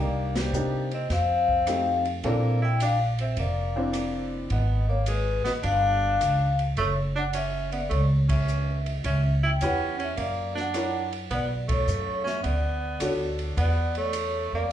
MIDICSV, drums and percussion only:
0, 0, Header, 1, 2, 480
1, 0, Start_track
1, 0, Tempo, 567108
1, 1893, Time_signature, 4, 2, 24, 8
1, 12460, End_track
2, 0, Start_track
2, 0, Title_t, "Drums"
2, 300, Note_on_c, 9, 38, 71
2, 301, Note_on_c, 9, 51, 59
2, 385, Note_off_c, 9, 38, 0
2, 386, Note_off_c, 9, 51, 0
2, 455, Note_on_c, 9, 44, 61
2, 540, Note_off_c, 9, 44, 0
2, 773, Note_on_c, 9, 51, 42
2, 858, Note_off_c, 9, 51, 0
2, 930, Note_on_c, 9, 36, 29
2, 930, Note_on_c, 9, 38, 35
2, 931, Note_on_c, 9, 51, 50
2, 1015, Note_off_c, 9, 36, 0
2, 1015, Note_off_c, 9, 38, 0
2, 1016, Note_off_c, 9, 51, 0
2, 1256, Note_on_c, 9, 36, 43
2, 1341, Note_off_c, 9, 36, 0
2, 1411, Note_on_c, 9, 37, 55
2, 1412, Note_on_c, 9, 44, 59
2, 1412, Note_on_c, 9, 51, 58
2, 1496, Note_off_c, 9, 37, 0
2, 1497, Note_off_c, 9, 44, 0
2, 1497, Note_off_c, 9, 51, 0
2, 1738, Note_on_c, 9, 51, 41
2, 1823, Note_off_c, 9, 51, 0
2, 1892, Note_on_c, 9, 51, 52
2, 1893, Note_on_c, 9, 36, 32
2, 1976, Note_off_c, 9, 51, 0
2, 1978, Note_off_c, 9, 36, 0
2, 2372, Note_on_c, 9, 44, 52
2, 2372, Note_on_c, 9, 51, 70
2, 2457, Note_off_c, 9, 44, 0
2, 2457, Note_off_c, 9, 51, 0
2, 2696, Note_on_c, 9, 51, 44
2, 2781, Note_off_c, 9, 51, 0
2, 2849, Note_on_c, 9, 51, 52
2, 2852, Note_on_c, 9, 36, 27
2, 2934, Note_off_c, 9, 51, 0
2, 2937, Note_off_c, 9, 36, 0
2, 3330, Note_on_c, 9, 37, 54
2, 3330, Note_on_c, 9, 44, 48
2, 3330, Note_on_c, 9, 51, 61
2, 3414, Note_off_c, 9, 37, 0
2, 3415, Note_off_c, 9, 44, 0
2, 3415, Note_off_c, 9, 51, 0
2, 3809, Note_on_c, 9, 51, 52
2, 3812, Note_on_c, 9, 36, 32
2, 3893, Note_off_c, 9, 51, 0
2, 3896, Note_off_c, 9, 36, 0
2, 4284, Note_on_c, 9, 44, 52
2, 4284, Note_on_c, 9, 51, 65
2, 4369, Note_off_c, 9, 44, 0
2, 4369, Note_off_c, 9, 51, 0
2, 4614, Note_on_c, 9, 38, 44
2, 4615, Note_on_c, 9, 51, 41
2, 4699, Note_off_c, 9, 38, 0
2, 4700, Note_off_c, 9, 51, 0
2, 4768, Note_on_c, 9, 51, 57
2, 4772, Note_on_c, 9, 36, 30
2, 4853, Note_off_c, 9, 51, 0
2, 4856, Note_off_c, 9, 36, 0
2, 5254, Note_on_c, 9, 37, 58
2, 5255, Note_on_c, 9, 44, 52
2, 5255, Note_on_c, 9, 51, 58
2, 5338, Note_off_c, 9, 37, 0
2, 5339, Note_off_c, 9, 44, 0
2, 5339, Note_off_c, 9, 51, 0
2, 5577, Note_on_c, 9, 51, 42
2, 5661, Note_off_c, 9, 51, 0
2, 5728, Note_on_c, 9, 51, 56
2, 5731, Note_on_c, 9, 36, 30
2, 5812, Note_off_c, 9, 51, 0
2, 5816, Note_off_c, 9, 36, 0
2, 6207, Note_on_c, 9, 44, 56
2, 6207, Note_on_c, 9, 51, 65
2, 6291, Note_off_c, 9, 44, 0
2, 6291, Note_off_c, 9, 51, 0
2, 6537, Note_on_c, 9, 51, 44
2, 6621, Note_off_c, 9, 51, 0
2, 6694, Note_on_c, 9, 51, 47
2, 6695, Note_on_c, 9, 36, 30
2, 6779, Note_off_c, 9, 36, 0
2, 6779, Note_off_c, 9, 51, 0
2, 7019, Note_on_c, 9, 36, 72
2, 7019, Note_on_c, 9, 51, 68
2, 7104, Note_off_c, 9, 36, 0
2, 7104, Note_off_c, 9, 51, 0
2, 7178, Note_on_c, 9, 44, 49
2, 7263, Note_off_c, 9, 44, 0
2, 7500, Note_on_c, 9, 51, 44
2, 7585, Note_off_c, 9, 51, 0
2, 7653, Note_on_c, 9, 51, 59
2, 7654, Note_on_c, 9, 36, 30
2, 7738, Note_off_c, 9, 36, 0
2, 7738, Note_off_c, 9, 51, 0
2, 8132, Note_on_c, 9, 44, 60
2, 8132, Note_on_c, 9, 51, 66
2, 8217, Note_off_c, 9, 44, 0
2, 8217, Note_off_c, 9, 51, 0
2, 8461, Note_on_c, 9, 51, 44
2, 8546, Note_off_c, 9, 51, 0
2, 8611, Note_on_c, 9, 51, 55
2, 8613, Note_on_c, 9, 36, 28
2, 8695, Note_off_c, 9, 51, 0
2, 8698, Note_off_c, 9, 36, 0
2, 8941, Note_on_c, 9, 38, 29
2, 9026, Note_off_c, 9, 38, 0
2, 9090, Note_on_c, 9, 37, 59
2, 9091, Note_on_c, 9, 44, 53
2, 9091, Note_on_c, 9, 51, 64
2, 9175, Note_off_c, 9, 37, 0
2, 9176, Note_off_c, 9, 44, 0
2, 9176, Note_off_c, 9, 51, 0
2, 9417, Note_on_c, 9, 51, 44
2, 9501, Note_off_c, 9, 51, 0
2, 9570, Note_on_c, 9, 51, 49
2, 9571, Note_on_c, 9, 36, 30
2, 9655, Note_off_c, 9, 51, 0
2, 9656, Note_off_c, 9, 36, 0
2, 9894, Note_on_c, 9, 51, 71
2, 9895, Note_on_c, 9, 36, 81
2, 9979, Note_off_c, 9, 51, 0
2, 9980, Note_off_c, 9, 36, 0
2, 10053, Note_on_c, 9, 44, 58
2, 10137, Note_off_c, 9, 44, 0
2, 10379, Note_on_c, 9, 38, 33
2, 10464, Note_off_c, 9, 38, 0
2, 10528, Note_on_c, 9, 51, 54
2, 10530, Note_on_c, 9, 36, 31
2, 10613, Note_off_c, 9, 51, 0
2, 10615, Note_off_c, 9, 36, 0
2, 11004, Note_on_c, 9, 37, 52
2, 11005, Note_on_c, 9, 44, 61
2, 11005, Note_on_c, 9, 51, 68
2, 11089, Note_off_c, 9, 37, 0
2, 11089, Note_off_c, 9, 44, 0
2, 11089, Note_off_c, 9, 51, 0
2, 11331, Note_on_c, 9, 51, 43
2, 11416, Note_off_c, 9, 51, 0
2, 11488, Note_on_c, 9, 36, 29
2, 11490, Note_on_c, 9, 51, 58
2, 11573, Note_off_c, 9, 36, 0
2, 11575, Note_off_c, 9, 51, 0
2, 11806, Note_on_c, 9, 51, 43
2, 11891, Note_off_c, 9, 51, 0
2, 11960, Note_on_c, 9, 44, 57
2, 11960, Note_on_c, 9, 51, 68
2, 12045, Note_off_c, 9, 44, 0
2, 12045, Note_off_c, 9, 51, 0
2, 12460, End_track
0, 0, End_of_file